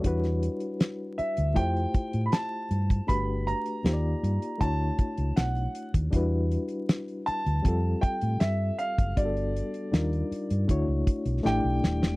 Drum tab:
HH |xxxxx-xxxxxxx-xx|x-xxx-xxx-xxxxxx|x-xxxxxxx-xxx-xx|xxxxxxxxx-xx----|
SD |-o--o-------o---|----o-------o---|----o-------o---|----o-------o-oo|
BD |o-------o-o----o|o-------o-o----o|o-------o-o----o|o-------o-o-----|